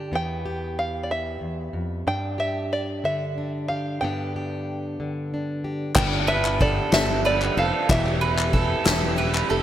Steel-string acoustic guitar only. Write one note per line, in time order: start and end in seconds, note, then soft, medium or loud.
0.00 0.12 D3 soft
0.00 0.45 G4 soft
0.12 1.40 E2 medium
0.12 2.07 B3 soft
0.46 2.38 G4 soft
1.41 1.73 E2 soft
1.73 2.06 F2 soft
2.07 4.01 G2 medium
2.07 3.37 D4 soft
2.38 3.69 G4 soft
3.04 4.01 D3 soft
3.38 4.03 D4 soft
3.69 4.04 G4 medium
4.02 5.92 G2 medium
4.02 4.99 D3 soft
4.02 5.93 B3 medium
4.02 5.32 D4 medium
4.02 4.35 G4 medium
4.36 5.63 G4 medium
5.00 7.90 D3 soft
5.34 5.93 D4 soft
5.64 5.92 G4 soft